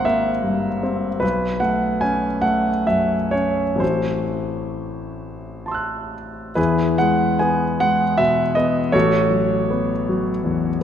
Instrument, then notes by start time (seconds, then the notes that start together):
grand piano
Already playing: G#1 A#3 C4 F#5 A#5 C6
0.05 A#3 E5
0.43 G2
0.83 C4
1.20 B1 B4
1.60 A3 F#5
2.01 C#4 G#5
2.42 A3 F#5
2.87 F#2 E5
3.31 C#4 C#5
3.75 A1 A3 C4 E4
3.80 F#4 C5
5.66 A5 C6
5.72 E6 F#6
6.55 E2 E4 G#4 B4
6.98 G#3 F#5
7.39 B3 G#5
7.80 G#3 F#5
8.18 B2 E5
8.55 B3 D#5
8.92 A1 F#4 A4 C#5
9.30 F#3
9.71 B3
10.09 F#3
10.44 E2